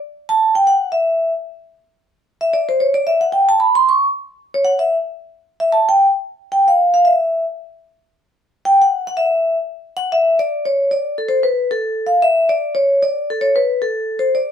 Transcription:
0, 0, Header, 1, 2, 480
1, 0, Start_track
1, 0, Key_signature, 2, "major"
1, 0, Tempo, 266430
1, 1173, Time_signature, 4, 2, 24, 8
1, 26154, End_track
2, 0, Start_track
2, 0, Title_t, "Vibraphone"
2, 0, Program_c, 0, 11
2, 523, Note_on_c, 0, 81, 112
2, 955, Note_off_c, 0, 81, 0
2, 996, Note_on_c, 0, 79, 86
2, 1179, Note_off_c, 0, 79, 0
2, 1210, Note_on_c, 0, 78, 87
2, 1639, Note_off_c, 0, 78, 0
2, 1658, Note_on_c, 0, 76, 80
2, 2362, Note_off_c, 0, 76, 0
2, 4341, Note_on_c, 0, 76, 80
2, 4530, Note_off_c, 0, 76, 0
2, 4565, Note_on_c, 0, 74, 76
2, 4821, Note_off_c, 0, 74, 0
2, 4841, Note_on_c, 0, 72, 79
2, 5020, Note_off_c, 0, 72, 0
2, 5050, Note_on_c, 0, 73, 77
2, 5300, Note_on_c, 0, 74, 87
2, 5303, Note_off_c, 0, 73, 0
2, 5489, Note_off_c, 0, 74, 0
2, 5526, Note_on_c, 0, 76, 86
2, 5781, Note_off_c, 0, 76, 0
2, 5783, Note_on_c, 0, 78, 84
2, 5970, Note_off_c, 0, 78, 0
2, 5989, Note_on_c, 0, 79, 82
2, 6251, Note_off_c, 0, 79, 0
2, 6282, Note_on_c, 0, 81, 95
2, 6460, Note_off_c, 0, 81, 0
2, 6486, Note_on_c, 0, 83, 90
2, 6740, Note_off_c, 0, 83, 0
2, 6762, Note_on_c, 0, 84, 97
2, 6940, Note_off_c, 0, 84, 0
2, 7003, Note_on_c, 0, 85, 91
2, 7149, Note_off_c, 0, 85, 0
2, 8185, Note_on_c, 0, 73, 86
2, 8370, Note_off_c, 0, 73, 0
2, 8371, Note_on_c, 0, 78, 94
2, 8634, Note_on_c, 0, 76, 80
2, 8640, Note_off_c, 0, 78, 0
2, 8833, Note_off_c, 0, 76, 0
2, 10091, Note_on_c, 0, 76, 90
2, 10280, Note_off_c, 0, 76, 0
2, 10314, Note_on_c, 0, 81, 98
2, 10569, Note_off_c, 0, 81, 0
2, 10605, Note_on_c, 0, 79, 93
2, 10712, Note_off_c, 0, 79, 0
2, 11745, Note_on_c, 0, 79, 90
2, 12003, Note_off_c, 0, 79, 0
2, 12032, Note_on_c, 0, 77, 82
2, 12460, Note_off_c, 0, 77, 0
2, 12500, Note_on_c, 0, 77, 84
2, 12681, Note_off_c, 0, 77, 0
2, 12699, Note_on_c, 0, 76, 80
2, 13393, Note_off_c, 0, 76, 0
2, 15589, Note_on_c, 0, 79, 107
2, 15839, Note_off_c, 0, 79, 0
2, 15883, Note_on_c, 0, 78, 95
2, 16302, Note_off_c, 0, 78, 0
2, 16346, Note_on_c, 0, 78, 96
2, 16519, Note_off_c, 0, 78, 0
2, 16520, Note_on_c, 0, 76, 86
2, 17219, Note_off_c, 0, 76, 0
2, 17955, Note_on_c, 0, 78, 107
2, 18210, Note_off_c, 0, 78, 0
2, 18235, Note_on_c, 0, 76, 105
2, 18677, Note_off_c, 0, 76, 0
2, 18725, Note_on_c, 0, 74, 88
2, 19195, Note_on_c, 0, 73, 81
2, 19209, Note_off_c, 0, 74, 0
2, 19658, Note_on_c, 0, 74, 86
2, 19685, Note_off_c, 0, 73, 0
2, 20110, Note_off_c, 0, 74, 0
2, 20144, Note_on_c, 0, 69, 75
2, 20332, Note_off_c, 0, 69, 0
2, 20332, Note_on_c, 0, 72, 84
2, 20598, Note_on_c, 0, 71, 81
2, 20630, Note_off_c, 0, 72, 0
2, 21060, Note_off_c, 0, 71, 0
2, 21097, Note_on_c, 0, 69, 79
2, 21737, Note_on_c, 0, 77, 85
2, 21738, Note_off_c, 0, 69, 0
2, 22022, Note_on_c, 0, 76, 84
2, 22025, Note_off_c, 0, 77, 0
2, 22509, Note_on_c, 0, 74, 88
2, 22545, Note_off_c, 0, 76, 0
2, 22965, Note_on_c, 0, 73, 82
2, 22979, Note_off_c, 0, 74, 0
2, 23447, Note_off_c, 0, 73, 0
2, 23466, Note_on_c, 0, 74, 92
2, 23939, Note_off_c, 0, 74, 0
2, 23966, Note_on_c, 0, 69, 73
2, 24163, Note_on_c, 0, 73, 87
2, 24168, Note_off_c, 0, 69, 0
2, 24425, Note_on_c, 0, 71, 82
2, 24472, Note_off_c, 0, 73, 0
2, 24894, Note_on_c, 0, 69, 77
2, 24899, Note_off_c, 0, 71, 0
2, 25570, Note_on_c, 0, 72, 77
2, 25632, Note_off_c, 0, 69, 0
2, 25848, Note_on_c, 0, 74, 75
2, 25898, Note_off_c, 0, 72, 0
2, 26154, Note_off_c, 0, 74, 0
2, 26154, End_track
0, 0, End_of_file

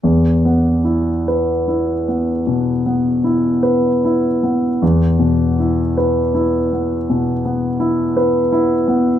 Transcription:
0, 0, Header, 1, 2, 480
1, 0, Start_track
1, 0, Tempo, 814111
1, 20, Time_signature, 12, 3, 24, 8
1, 980, Tempo, 790514
1, 2900, Tempo, 759494
1, 4340, Tempo, 718563
1, 5736, End_track
2, 0, Start_track
2, 0, Title_t, "Grand piano"
2, 0, Program_c, 0, 0
2, 20, Note_on_c, 0, 40, 43
2, 134, Control_c, 0, 64, 127
2, 266, Note_on_c, 0, 59, 36
2, 498, Note_on_c, 0, 64, 35
2, 643, Note_off_c, 0, 59, 0
2, 755, Note_on_c, 0, 71, 35
2, 884, Note_off_c, 0, 64, 0
2, 989, Note_on_c, 0, 64, 35
2, 1135, Note_off_c, 0, 71, 0
2, 1235, Note_on_c, 0, 59, 35
2, 1370, Note_off_c, 0, 64, 0
2, 1435, Note_off_c, 0, 40, 0
2, 1471, Note_on_c, 0, 47, 35
2, 1608, Note_off_c, 0, 59, 0
2, 1709, Note_on_c, 0, 59, 34
2, 1844, Note_off_c, 0, 47, 0
2, 1939, Note_on_c, 0, 64, 38
2, 2088, Note_off_c, 0, 59, 0
2, 2174, Note_on_c, 0, 71, 40
2, 2330, Note_off_c, 0, 64, 0
2, 2429, Note_on_c, 0, 64, 37
2, 2567, Note_off_c, 0, 71, 0
2, 2663, Note_on_c, 0, 59, 35
2, 2807, Note_off_c, 0, 64, 0
2, 2898, Note_on_c, 0, 40, 44
2, 2907, Control_c, 0, 64, 0
2, 3013, Control_c, 0, 64, 127
2, 3041, Note_off_c, 0, 59, 0
2, 3134, Note_on_c, 0, 47, 36
2, 3387, Note_on_c, 0, 64, 36
2, 3524, Note_off_c, 0, 47, 0
2, 3627, Note_on_c, 0, 71, 37
2, 3774, Note_off_c, 0, 64, 0
2, 3862, Note_on_c, 0, 64, 39
2, 4014, Note_off_c, 0, 71, 0
2, 4103, Note_on_c, 0, 59, 34
2, 4244, Note_off_c, 0, 64, 0
2, 4313, Note_off_c, 0, 40, 0
2, 4337, Note_on_c, 0, 47, 41
2, 4480, Note_off_c, 0, 59, 0
2, 4575, Note_on_c, 0, 59, 38
2, 4724, Note_off_c, 0, 47, 0
2, 4805, Note_on_c, 0, 64, 45
2, 4965, Note_off_c, 0, 59, 0
2, 5050, Note_on_c, 0, 71, 45
2, 5198, Note_off_c, 0, 64, 0
2, 5289, Note_on_c, 0, 64, 44
2, 5437, Note_off_c, 0, 71, 0
2, 5526, Note_on_c, 0, 59, 44
2, 5675, Note_off_c, 0, 64, 0
2, 5736, Note_off_c, 0, 59, 0
2, 5736, End_track
0, 0, End_of_file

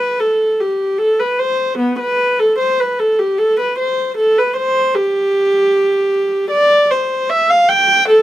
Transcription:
0, 0, Header, 1, 2, 480
1, 0, Start_track
1, 0, Tempo, 793651
1, 123, Time_signature, 4, 2, 24, 8
1, 2524, Tempo, 770218
1, 3484, Tempo, 791557
1, 5006, End_track
2, 0, Start_track
2, 0, Title_t, "Viola"
2, 0, Program_c, 0, 41
2, 0, Note_on_c, 0, 71, 82
2, 106, Note_off_c, 0, 71, 0
2, 120, Note_on_c, 0, 69, 64
2, 360, Note_off_c, 0, 69, 0
2, 365, Note_on_c, 0, 67, 55
2, 596, Note_on_c, 0, 69, 67
2, 603, Note_off_c, 0, 67, 0
2, 718, Note_off_c, 0, 69, 0
2, 721, Note_on_c, 0, 71, 61
2, 837, Note_on_c, 0, 72, 72
2, 841, Note_off_c, 0, 71, 0
2, 1079, Note_on_c, 0, 59, 70
2, 1080, Note_off_c, 0, 72, 0
2, 1197, Note_off_c, 0, 59, 0
2, 1206, Note_on_c, 0, 71, 72
2, 1437, Note_off_c, 0, 71, 0
2, 1446, Note_on_c, 0, 69, 69
2, 1562, Note_off_c, 0, 69, 0
2, 1565, Note_on_c, 0, 72, 76
2, 1679, Note_off_c, 0, 72, 0
2, 1694, Note_on_c, 0, 71, 63
2, 1807, Note_off_c, 0, 71, 0
2, 1809, Note_on_c, 0, 69, 67
2, 1926, Note_off_c, 0, 69, 0
2, 1929, Note_on_c, 0, 67, 63
2, 2047, Note_on_c, 0, 69, 77
2, 2048, Note_off_c, 0, 67, 0
2, 2168, Note_off_c, 0, 69, 0
2, 2178, Note_on_c, 0, 71, 63
2, 2291, Note_off_c, 0, 71, 0
2, 2292, Note_on_c, 0, 72, 65
2, 2522, Note_off_c, 0, 72, 0
2, 2526, Note_on_c, 0, 69, 73
2, 2642, Note_off_c, 0, 69, 0
2, 2652, Note_on_c, 0, 71, 60
2, 2767, Note_off_c, 0, 71, 0
2, 2772, Note_on_c, 0, 72, 82
2, 3002, Note_off_c, 0, 72, 0
2, 3005, Note_on_c, 0, 67, 82
2, 3965, Note_off_c, 0, 67, 0
2, 3965, Note_on_c, 0, 74, 88
2, 4197, Note_off_c, 0, 74, 0
2, 4210, Note_on_c, 0, 72, 67
2, 4443, Note_on_c, 0, 76, 82
2, 4446, Note_off_c, 0, 72, 0
2, 4563, Note_off_c, 0, 76, 0
2, 4567, Note_on_c, 0, 77, 77
2, 4681, Note_on_c, 0, 79, 92
2, 4686, Note_off_c, 0, 77, 0
2, 4924, Note_off_c, 0, 79, 0
2, 4925, Note_on_c, 0, 69, 83
2, 5006, Note_off_c, 0, 69, 0
2, 5006, End_track
0, 0, End_of_file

